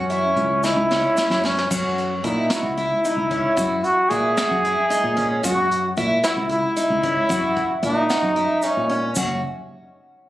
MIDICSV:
0, 0, Header, 1, 5, 480
1, 0, Start_track
1, 0, Tempo, 532387
1, 1535, Time_signature, 7, 3, 24, 8
1, 9280, End_track
2, 0, Start_track
2, 0, Title_t, "Twelve-string acoustic guitar"
2, 0, Program_c, 0, 25
2, 89, Note_on_c, 0, 64, 67
2, 470, Note_off_c, 0, 64, 0
2, 574, Note_on_c, 0, 63, 70
2, 763, Note_off_c, 0, 63, 0
2, 818, Note_on_c, 0, 61, 74
2, 1006, Note_off_c, 0, 61, 0
2, 1054, Note_on_c, 0, 61, 82
2, 1244, Note_off_c, 0, 61, 0
2, 1295, Note_on_c, 0, 61, 83
2, 1485, Note_off_c, 0, 61, 0
2, 1539, Note_on_c, 0, 66, 80
2, 1918, Note_off_c, 0, 66, 0
2, 2018, Note_on_c, 0, 64, 70
2, 2208, Note_off_c, 0, 64, 0
2, 2256, Note_on_c, 0, 66, 76
2, 2447, Note_off_c, 0, 66, 0
2, 2502, Note_on_c, 0, 64, 71
2, 2691, Note_off_c, 0, 64, 0
2, 2748, Note_on_c, 0, 63, 76
2, 2934, Note_off_c, 0, 63, 0
2, 2983, Note_on_c, 0, 61, 78
2, 3172, Note_off_c, 0, 61, 0
2, 3215, Note_on_c, 0, 66, 80
2, 3598, Note_off_c, 0, 66, 0
2, 3705, Note_on_c, 0, 64, 75
2, 3893, Note_off_c, 0, 64, 0
2, 3941, Note_on_c, 0, 66, 82
2, 4131, Note_off_c, 0, 66, 0
2, 4190, Note_on_c, 0, 64, 70
2, 4376, Note_off_c, 0, 64, 0
2, 4420, Note_on_c, 0, 63, 87
2, 4610, Note_off_c, 0, 63, 0
2, 4659, Note_on_c, 0, 61, 85
2, 4850, Note_off_c, 0, 61, 0
2, 4899, Note_on_c, 0, 66, 82
2, 5280, Note_off_c, 0, 66, 0
2, 5385, Note_on_c, 0, 64, 74
2, 5573, Note_off_c, 0, 64, 0
2, 5622, Note_on_c, 0, 66, 76
2, 5811, Note_off_c, 0, 66, 0
2, 5854, Note_on_c, 0, 64, 75
2, 6047, Note_off_c, 0, 64, 0
2, 6100, Note_on_c, 0, 63, 84
2, 6290, Note_off_c, 0, 63, 0
2, 6342, Note_on_c, 0, 61, 88
2, 6531, Note_off_c, 0, 61, 0
2, 6573, Note_on_c, 0, 66, 81
2, 6955, Note_off_c, 0, 66, 0
2, 7057, Note_on_c, 0, 64, 77
2, 7247, Note_off_c, 0, 64, 0
2, 7299, Note_on_c, 0, 66, 80
2, 7488, Note_off_c, 0, 66, 0
2, 7538, Note_on_c, 0, 64, 72
2, 7727, Note_off_c, 0, 64, 0
2, 7786, Note_on_c, 0, 63, 90
2, 7971, Note_off_c, 0, 63, 0
2, 8020, Note_on_c, 0, 61, 82
2, 8207, Note_off_c, 0, 61, 0
2, 8266, Note_on_c, 0, 66, 73
2, 8483, Note_off_c, 0, 66, 0
2, 9280, End_track
3, 0, Start_track
3, 0, Title_t, "Flugelhorn"
3, 0, Program_c, 1, 56
3, 0, Note_on_c, 1, 61, 83
3, 578, Note_on_c, 1, 64, 109
3, 591, Note_off_c, 1, 61, 0
3, 1308, Note_on_c, 1, 61, 84
3, 1321, Note_off_c, 1, 64, 0
3, 1539, Note_off_c, 1, 61, 0
3, 1544, Note_on_c, 1, 61, 72
3, 2024, Note_on_c, 1, 63, 72
3, 2037, Note_off_c, 1, 61, 0
3, 2283, Note_on_c, 1, 64, 99
3, 2296, Note_off_c, 1, 63, 0
3, 3462, Note_on_c, 1, 66, 97
3, 3476, Note_off_c, 1, 64, 0
3, 3687, Note_on_c, 1, 68, 107
3, 3701, Note_off_c, 1, 66, 0
3, 4895, Note_off_c, 1, 68, 0
3, 4902, Note_on_c, 1, 66, 79
3, 5344, Note_off_c, 1, 66, 0
3, 5628, Note_on_c, 1, 64, 112
3, 5848, Note_off_c, 1, 64, 0
3, 5872, Note_on_c, 1, 64, 115
3, 7028, Note_off_c, 1, 64, 0
3, 7076, Note_on_c, 1, 63, 105
3, 7789, Note_on_c, 1, 61, 81
3, 7803, Note_off_c, 1, 63, 0
3, 8251, Note_off_c, 1, 61, 0
3, 8256, Note_on_c, 1, 61, 61
3, 8478, Note_off_c, 1, 61, 0
3, 9280, End_track
4, 0, Start_track
4, 0, Title_t, "Fretless electric bass"
4, 0, Program_c, 2, 35
4, 0, Note_on_c, 2, 42, 86
4, 293, Note_off_c, 2, 42, 0
4, 327, Note_on_c, 2, 37, 94
4, 655, Note_off_c, 2, 37, 0
4, 693, Note_on_c, 2, 37, 83
4, 910, Note_off_c, 2, 37, 0
4, 1173, Note_on_c, 2, 42, 73
4, 1500, Note_off_c, 2, 42, 0
4, 1542, Note_on_c, 2, 42, 89
4, 1984, Note_off_c, 2, 42, 0
4, 2020, Note_on_c, 2, 46, 83
4, 2236, Note_off_c, 2, 46, 0
4, 2371, Note_on_c, 2, 37, 69
4, 2592, Note_off_c, 2, 37, 0
4, 2855, Note_on_c, 2, 37, 77
4, 3074, Note_off_c, 2, 37, 0
4, 3226, Note_on_c, 2, 42, 88
4, 3440, Note_off_c, 2, 42, 0
4, 3701, Note_on_c, 2, 46, 93
4, 3918, Note_off_c, 2, 46, 0
4, 4069, Note_on_c, 2, 42, 81
4, 4282, Note_off_c, 2, 42, 0
4, 4541, Note_on_c, 2, 46, 74
4, 4867, Note_off_c, 2, 46, 0
4, 4905, Note_on_c, 2, 42, 90
4, 5347, Note_off_c, 2, 42, 0
4, 5386, Note_on_c, 2, 46, 89
4, 5601, Note_off_c, 2, 46, 0
4, 5739, Note_on_c, 2, 37, 75
4, 5957, Note_off_c, 2, 37, 0
4, 6223, Note_on_c, 2, 37, 81
4, 6438, Note_off_c, 2, 37, 0
4, 6580, Note_on_c, 2, 42, 87
4, 6796, Note_off_c, 2, 42, 0
4, 7058, Note_on_c, 2, 46, 89
4, 7274, Note_off_c, 2, 46, 0
4, 7417, Note_on_c, 2, 42, 78
4, 7633, Note_off_c, 2, 42, 0
4, 7908, Note_on_c, 2, 46, 88
4, 8227, Note_off_c, 2, 46, 0
4, 8264, Note_on_c, 2, 30, 87
4, 8482, Note_off_c, 2, 30, 0
4, 9280, End_track
5, 0, Start_track
5, 0, Title_t, "Drums"
5, 93, Note_on_c, 9, 42, 58
5, 183, Note_off_c, 9, 42, 0
5, 328, Note_on_c, 9, 42, 58
5, 418, Note_off_c, 9, 42, 0
5, 571, Note_on_c, 9, 82, 41
5, 582, Note_on_c, 9, 38, 55
5, 661, Note_off_c, 9, 82, 0
5, 673, Note_off_c, 9, 38, 0
5, 824, Note_on_c, 9, 38, 68
5, 914, Note_off_c, 9, 38, 0
5, 1055, Note_on_c, 9, 82, 49
5, 1061, Note_on_c, 9, 38, 82
5, 1145, Note_off_c, 9, 82, 0
5, 1151, Note_off_c, 9, 38, 0
5, 1181, Note_on_c, 9, 38, 68
5, 1272, Note_off_c, 9, 38, 0
5, 1305, Note_on_c, 9, 38, 88
5, 1395, Note_off_c, 9, 38, 0
5, 1428, Note_on_c, 9, 38, 90
5, 1519, Note_off_c, 9, 38, 0
5, 1541, Note_on_c, 9, 36, 96
5, 1544, Note_on_c, 9, 82, 62
5, 1545, Note_on_c, 9, 49, 91
5, 1631, Note_off_c, 9, 36, 0
5, 1634, Note_off_c, 9, 82, 0
5, 1635, Note_off_c, 9, 49, 0
5, 1783, Note_on_c, 9, 42, 58
5, 1873, Note_off_c, 9, 42, 0
5, 2019, Note_on_c, 9, 42, 59
5, 2021, Note_on_c, 9, 36, 75
5, 2028, Note_on_c, 9, 82, 18
5, 2109, Note_off_c, 9, 42, 0
5, 2111, Note_off_c, 9, 36, 0
5, 2118, Note_off_c, 9, 82, 0
5, 2253, Note_on_c, 9, 38, 87
5, 2253, Note_on_c, 9, 42, 75
5, 2272, Note_on_c, 9, 82, 41
5, 2344, Note_off_c, 9, 38, 0
5, 2344, Note_off_c, 9, 42, 0
5, 2362, Note_off_c, 9, 82, 0
5, 2504, Note_on_c, 9, 42, 56
5, 2594, Note_off_c, 9, 42, 0
5, 2748, Note_on_c, 9, 82, 48
5, 2749, Note_on_c, 9, 42, 80
5, 2838, Note_off_c, 9, 82, 0
5, 2839, Note_off_c, 9, 42, 0
5, 2983, Note_on_c, 9, 36, 67
5, 2987, Note_on_c, 9, 42, 48
5, 3074, Note_off_c, 9, 36, 0
5, 3077, Note_off_c, 9, 42, 0
5, 3217, Note_on_c, 9, 42, 67
5, 3223, Note_on_c, 9, 36, 101
5, 3224, Note_on_c, 9, 82, 63
5, 3308, Note_off_c, 9, 42, 0
5, 3313, Note_off_c, 9, 36, 0
5, 3314, Note_off_c, 9, 82, 0
5, 3461, Note_on_c, 9, 42, 58
5, 3551, Note_off_c, 9, 42, 0
5, 3698, Note_on_c, 9, 42, 60
5, 3703, Note_on_c, 9, 36, 73
5, 3712, Note_on_c, 9, 82, 19
5, 3788, Note_off_c, 9, 42, 0
5, 3793, Note_off_c, 9, 36, 0
5, 3802, Note_off_c, 9, 82, 0
5, 3942, Note_on_c, 9, 82, 46
5, 3944, Note_on_c, 9, 38, 100
5, 3944, Note_on_c, 9, 42, 75
5, 4032, Note_off_c, 9, 82, 0
5, 4034, Note_off_c, 9, 38, 0
5, 4034, Note_off_c, 9, 42, 0
5, 4187, Note_on_c, 9, 42, 58
5, 4277, Note_off_c, 9, 42, 0
5, 4426, Note_on_c, 9, 42, 84
5, 4430, Note_on_c, 9, 82, 42
5, 4517, Note_off_c, 9, 42, 0
5, 4520, Note_off_c, 9, 82, 0
5, 4666, Note_on_c, 9, 36, 67
5, 4668, Note_on_c, 9, 42, 59
5, 4757, Note_off_c, 9, 36, 0
5, 4758, Note_off_c, 9, 42, 0
5, 4905, Note_on_c, 9, 82, 56
5, 4907, Note_on_c, 9, 36, 108
5, 4908, Note_on_c, 9, 42, 86
5, 4995, Note_off_c, 9, 82, 0
5, 4997, Note_off_c, 9, 36, 0
5, 4998, Note_off_c, 9, 42, 0
5, 5150, Note_on_c, 9, 42, 61
5, 5240, Note_off_c, 9, 42, 0
5, 5380, Note_on_c, 9, 82, 17
5, 5389, Note_on_c, 9, 36, 84
5, 5394, Note_on_c, 9, 42, 63
5, 5470, Note_off_c, 9, 82, 0
5, 5479, Note_off_c, 9, 36, 0
5, 5484, Note_off_c, 9, 42, 0
5, 5622, Note_on_c, 9, 38, 100
5, 5622, Note_on_c, 9, 42, 79
5, 5627, Note_on_c, 9, 82, 42
5, 5712, Note_off_c, 9, 38, 0
5, 5712, Note_off_c, 9, 42, 0
5, 5717, Note_off_c, 9, 82, 0
5, 5866, Note_on_c, 9, 42, 59
5, 5956, Note_off_c, 9, 42, 0
5, 6098, Note_on_c, 9, 42, 88
5, 6101, Note_on_c, 9, 82, 43
5, 6188, Note_off_c, 9, 42, 0
5, 6191, Note_off_c, 9, 82, 0
5, 6344, Note_on_c, 9, 36, 67
5, 6346, Note_on_c, 9, 42, 62
5, 6434, Note_off_c, 9, 36, 0
5, 6436, Note_off_c, 9, 42, 0
5, 6578, Note_on_c, 9, 42, 85
5, 6583, Note_on_c, 9, 36, 97
5, 6588, Note_on_c, 9, 82, 52
5, 6668, Note_off_c, 9, 42, 0
5, 6673, Note_off_c, 9, 36, 0
5, 6678, Note_off_c, 9, 82, 0
5, 6819, Note_on_c, 9, 42, 54
5, 6823, Note_on_c, 9, 36, 79
5, 6910, Note_off_c, 9, 42, 0
5, 6913, Note_off_c, 9, 36, 0
5, 7061, Note_on_c, 9, 36, 77
5, 7061, Note_on_c, 9, 42, 64
5, 7062, Note_on_c, 9, 82, 17
5, 7151, Note_off_c, 9, 36, 0
5, 7151, Note_off_c, 9, 42, 0
5, 7152, Note_off_c, 9, 82, 0
5, 7300, Note_on_c, 9, 82, 36
5, 7304, Note_on_c, 9, 38, 102
5, 7304, Note_on_c, 9, 42, 80
5, 7390, Note_off_c, 9, 82, 0
5, 7394, Note_off_c, 9, 38, 0
5, 7394, Note_off_c, 9, 42, 0
5, 7545, Note_on_c, 9, 42, 62
5, 7635, Note_off_c, 9, 42, 0
5, 7773, Note_on_c, 9, 82, 47
5, 7787, Note_on_c, 9, 42, 82
5, 7863, Note_off_c, 9, 82, 0
5, 7877, Note_off_c, 9, 42, 0
5, 8032, Note_on_c, 9, 42, 61
5, 8122, Note_off_c, 9, 42, 0
5, 8251, Note_on_c, 9, 82, 86
5, 8264, Note_on_c, 9, 36, 95
5, 8270, Note_on_c, 9, 49, 85
5, 8341, Note_off_c, 9, 82, 0
5, 8354, Note_off_c, 9, 36, 0
5, 8360, Note_off_c, 9, 49, 0
5, 9280, End_track
0, 0, End_of_file